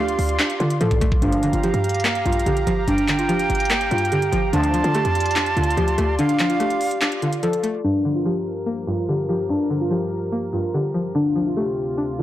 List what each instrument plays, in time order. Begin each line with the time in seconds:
Already playing: 808-style bass D2, synth pluck D3 F3 A3, analog synth pad F4 D5 C6, flute F5
0.00 synth keys G4
0.08 closed hi-hat
0.19 808-style bass D2, closed hi-hat, open hi-hat
0.29 closed hi-hat
0.39 synth pluck D4, clap, closed hi-hat
0.50 closed hi-hat
0.60 808-style bass D3, synth pluck D3, synth keys F4, closed hi-hat
0.70 closed hi-hat
0.81 808-style bass A2, synth pluck F3, synth keys A4, closed hi-hat
0.91 kick, closed hi-hat
1.01 synth pluck A3, kick, closed hi-hat
1.12 kick
1.22 808-style bass G1, brass ensemble D2 A#2 F3, synth pluck G2, synth keys D4, analog synth pad G4 F5 A#5, flute F5, closed hi-hat
1.32 closed hi-hat
1.43 synth pluck D3, closed hi-hat
1.53 808-style bass G1, synth keys F4, closed hi-hat
1.63 synth pluck F3, synth keys G4, closed hi-hat
1.74 808-style bass G2, closed hi-hat
1.84 closed hi-hat
1.89 closed hi-hat
1.94 closed hi-hat
2.00 closed hi-hat
2.04 synth pluck A#3, clap, closed hi-hat
2.15 closed hi-hat
2.25 808-style bass A#1, synth pluck G2, synth keys F4, closed hi-hat
2.33 closed hi-hat
2.39 closed hi-hat
2.46 808-style bass A#1, synth pluck D3, synth keys G4, closed hi-hat
2.57 closed hi-hat
2.67 808-style bass G1, synth pluck F3, synth keys G4, closed hi-hat
2.87 808-style bass G1, synth pluck G2, synth keys D4, flute G5, closed hi-hat
2.98 closed hi-hat
3.08 synth pluck D3, clap, closed hi-hat
3.19 synth keys F4, closed hi-hat
3.29 synth pluck F3, synth keys G4, closed hi-hat
3.39 closed hi-hat
3.50 808-style bass G1, closed hi-hat
3.55 closed hi-hat
3.60 closed hi-hat
3.65 closed hi-hat
3.70 synth pluck A#3, clap, closed hi-hat
3.81 closed hi-hat
3.91 synth pluck G2, 808-style bass G2, synth keys F4, closed hi-hat
3.98 closed hi-hat
4.05 closed hi-hat
4.12 synth pluck D3, synth keys G4, closed hi-hat
4.22 closed hi-hat
4.32 808-style bass G1, synth pluck F3, closed hi-hat
4.53 brass ensemble D2 C3 F3, 808-style bass D2, synth pluck D3, synth keys D4, analog synth pad F4 D5 C6, flute A5, closed hi-hat
4.64 closed hi-hat
4.74 synth pluck F3, closed hi-hat
4.84 808-style bass D3, synth keys F4, closed hi-hat
4.94 synth pluck A3, synth keys G4, closed hi-hat
5.05 808-style bass F2, closed hi-hat
5.15 closed hi-hat
5.20 closed hi-hat
5.26 closed hi-hat
5.31 closed hi-hat
5.35 synth pluck D4, clap, closed hi-hat
5.46 closed hi-hat
5.56 808-style bass D2, synth pluck D3, synth keys F4, closed hi-hat
5.63 closed hi-hat
5.70 closed hi-hat
5.77 808-style bass D2, synth pluck F3, synth keys G4, closed hi-hat
5.88 closed hi-hat
5.98 808-style bass D2, synth pluck A3, synth keys G4, closed hi-hat
6.18 synth pluck D3, synth keys D4, flute F5, closed hi-hat
6.29 closed hi-hat
6.39 synth pluck F3, clap, closed hi-hat
6.49 synth keys F4, closed hi-hat
6.60 synth pluck A3, synth keys G4, closed hi-hat
6.70 closed hi-hat
6.81 closed hi-hat, open hi-hat
6.91 closed hi-hat
7.01 synth pluck D4, clap, closed hi-hat
7.12 closed hi-hat
7.22 synth pluck D3, synth keys F4, closed hi-hat
7.33 closed hi-hat
7.43 synth pluck F3, synth keys A4, closed hi-hat
7.53 closed hi-hat
7.63 synth pluck A3, closed hi-hat
7.84 analog synth pad G2 F3 A#4, synth pluck G2, synth keys D4
8.05 synth pluck D3
8.15 synth keys F4
8.25 synth pluck F3, synth keys G4
8.66 synth pluck A#3
8.87 synth pluck G2, synth keys F4
9.08 synth pluck D3, synth keys G4
9.29 synth pluck F3, synth keys G4
9.49 synth pluck G2, synth keys D4
9.70 synth pluck D3
9.81 synth keys F4
9.91 synth pluck F3, synth keys G4
10.32 synth pluck A#3
10.53 synth pluck G2, synth keys F4
10.74 synth pluck D3, synth keys G4
10.94 synth pluck F3
11.15 analog synth pad D2 C3 F4, synth pluck D3, synth keys D4
11.36 synth pluck F3
11.46 synth keys F4
11.57 synth pluck A3, synth keys G4
11.98 synth pluck D4
12.19 synth pluck D3, synth keys F4